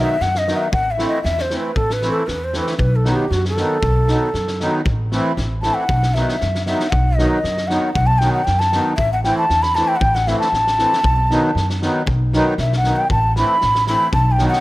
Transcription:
Already playing: accordion D#3 F#3 B3 D#4, ney E5
0.21 upright bass F#2, ney F#5, snare
0.35 ney D#5, snare
0.46 accordion D#3 F#3 B3 D#4, snare
0.56 ney E5
0.72 upright bass A1, ney F#5, kick
0.91 ney E5
0.98 accordion E3 A3 C4 E4, snare
1.07 ney D#5
1.23 upright bass E2, ney E5, snare
1.38 ney C5, snare
1.50 accordion E3 A3 C4 E4, snare
1.58 ney B4
1.76 upright bass A1, ney A4, kick
1.90 ney B4, snare
2.01 accordion E3 A3 C4 E4, snare
2.11 ney A4
2.27 upright bass E2, ney B4, snare
2.44 ney C5
2.53 accordion E3 A3 C4 E4, snare
2.60 ney B4
2.67 snare
2.77 upright bass B1, ney B4, kick
2.96 ney A4
3.04 accordion D#3 F#3 B3 D#4, snare
3.12 ney G4
3.31 upright bass F#2, ney F#4, snare
3.45 ney A4, snare
3.57 accordion D#3 F#3 B3 D#4, snare
3.82 upright bass B1, kick
4.08 accordion D#3 F#3 B3 D#4, snare
4.34 upright bass F#2, snare
4.48 snare
4.60 accordion D#3 F#3 B3 D#4, snare
4.85 upright bass A1, kick
5.11 accordion E3 A3 C4 E4, snare
5.37 upright bass A1, snare
5.62 accordion E3 A3 C4 E4, ney A5, snare
5.75 ney F#5
5.89 upright bass B1, kick
6.03 snare
6.14 accordion D#3 F#3 B3 D#4, ney E5, snare
6.29 snare
6.41 upright bass F#2, snare
6.55 snare
6.66 accordion D#3 F#3 B3 D#4, ney E5, snare
6.80 snare
6.90 upright bass B1, ney F#5, kick
7.16 accordion D#3 F#3 B3 D#4, ney D#5, snare
7.44 upright bass F#2, snare
7.57 snare
7.67 accordion D#3 F#3 B3 D#4, ney F#5, snare
7.93 upright bass B1, ney F#5, kick
8.06 ney A5
8.18 accordion D#3 F#3 B3 D#4, ney G5, snare
8.33 ney F#5
8.44 upright bass F#2, ney G5, snare
8.59 ney A5, snare
8.72 accordion D#3 F#3 B3 D#4, snare
8.96 upright bass A1, ney E5, kick
9.13 ney F#5
9.24 accordion E3 A3 C4 E4, ney G5, snare
9.38 ney A5
9.50 upright bass E2, snare
9.62 ney B5, snare
9.75 accordion E3 A3 C4 E4, ney A5, snare
9.88 ney G5
9.96 ney F#5
10.01 upright bass A1, ney G5, kick
10.15 ney F#5, snare
10.27 accordion E3 A3 C4 E4, ney E5, snare
10.39 ney A5, snare
10.52 upright bass A1, snare
10.67 snare
10.78 accordion E3 A3 C4 E4, snare
10.93 snare
11.03 upright bass B1, kick
11.30 accordion D#3 F#3 B3 D#4, snare
11.55 upright bass F#2, snare
11.70 snare
11.81 accordion D#3 F#3 B3 D#4, snare
12.06 upright bass B1, kick
12.33 accordion D#3 F#3 B3 D#4, snare
12.58 upright bass B1, ney E5, snare
12.73 snare
12.77 ney F#5
12.84 accordion D#3 F#3 B3 D#4, snare
12.96 ney G5
13.10 upright bass A1, ney A5, kick
13.36 accordion E3 A3 C4 E4, ney B5, snare
13.61 upright bass A1, snare
13.75 snare
13.87 accordion E3 A3 C4 E4, ney B5, snare
14.13 upright bass B1, ney A5, kick
14.32 ney G5
14.39 accordion D#3 F#3 B3 D#4, snare
14.48 ney F#5
14.53 snare

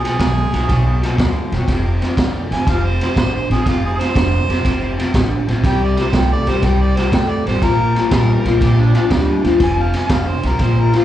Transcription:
0.03 clean electric guitar B2 F#3, harmonica G#4, snare, ride
0.19 upright bass B1, clean electric guitar B2 G#3, kick, snare, ride
0.52 upright bass B1, clean electric guitar B2 F#3, snare, ride
0.68 upright bass B1, clean electric guitar B2 F#3, kick, snare, ride
1.02 clean electric guitar B2 F#3, snare, ride
1.18 upright bass D2, clean electric guitar B2 G#3, kick, snare, ride
1.52 upright bass E1, clean electric guitar B2 F#3, snare, ride
1.68 upright bass F1, clean electric guitar F2 C3, kick, snare, ride
2.01 clean electric guitar F2 C3, snare, ride
2.17 upright bass F1, clean electric guitar F2 D3, kick, snare, ride
2.51 upright bass F1, clean electric guitar F2 C3, harmonica G#5, snare, ride
2.67 upright bass F1, clean electric guitar F2 C3, harmonica F5, kick, snare, ride
2.86 harmonica C5
3.01 clean electric guitar F2 C3, harmonica C5, snare, ride
3.16 upright bass A1, clean electric guitar F2 D3, harmonica C5, kick, snare, ride
3.34 harmonica C5
3.50 upright bass A1, clean electric guitar F2 C3, harmonica G#4, snare, ride
3.66 upright bass F1, clean electric guitar F2 C3, harmonica F4, kick, snare, ride
3.85 harmonica G#4
3.99 clean electric guitar F2 C3, harmonica C5, snare, ride
4.14 upright bass F1, clean electric guitar F2 D3, kick, snare, ride
4.48 upright bass F1, clean electric guitar F2 C3, snare, ride
4.65 upright bass F1, clean electric guitar F2 C3, kick, snare, ride
4.98 clean electric guitar F2 C3, snare, ride
5.14 upright bass A1, clean electric guitar F2 D3, kick, snare, ride
5.48 upright bass A1, clean electric guitar F2 C3, snare, ride
5.64 upright bass C2, clean electric guitar C3 G3, harmonica G5, kick, snare, ride
5.84 harmonica D5
5.97 clean electric guitar C3 G3, harmonica C5, snare, ride
6.13 upright bass C2, clean electric guitar C3 A3, kick, snare, ride
6.17 harmonica G5
6.33 harmonica D5
6.47 upright bass C2, clean electric guitar C3 G3, harmonica C5, snare, ride
6.63 upright bass C2, clean electric guitar C3 G3, harmonica G5, kick, snare, ride
6.82 harmonica D5
6.96 clean electric guitar C3 G3, harmonica C5, snare, ride
7.12 upright bass E2, clean electric guitar C3 A3, harmonica G5, kick, snare, ride
7.30 harmonica D5
7.46 upright bass A1, clean electric guitar C3 G3, harmonica C5, snare, ride
7.62 upright bass A#1, clean electric guitar A#2 F3, harmonica A#4, kick, snare, ride
7.96 clean electric guitar A#2 F3, snare, ride
8.11 upright bass A#1, clean electric guitar A#2 G3, electric slide guitar A#4, kick, snare, ride
8.45 upright bass A#1, clean electric guitar A#2 F3, snare, ride
8.61 upright bass A#1, clean electric guitar A#2 F3, electric slide guitar G4, kick, snare, ride
8.78 electric slide guitar D4
8.95 clean electric guitar A#2 F3, electric slide guitar D4, snare, ride
9.10 upright bass D2, clean electric guitar A#2 G3, kick, snare, ride
9.44 upright bass D#2, clean electric guitar A#2 F3, snare, ride
9.60 upright bass F1, clean electric guitar F2 C3, harmonica G#5, kick, snare, ride
9.81 harmonica F5
9.93 clean electric guitar F2 C3, harmonica G#5, snare, ride
10.09 upright bass F1, clean electric guitar F2 D3, harmonica F5, kick, snare, ride
10.28 harmonica C5
10.43 upright bass C2, clean electric guitar F2 C3, harmonica A#4, snare, ride
10.59 upright bass A#1, clean electric guitar A#2 F3, harmonica C5, kick, snare, ride
10.80 harmonica A#4
10.92 clean electric guitar A#2 F3, snare, ride
10.96 harmonica F4

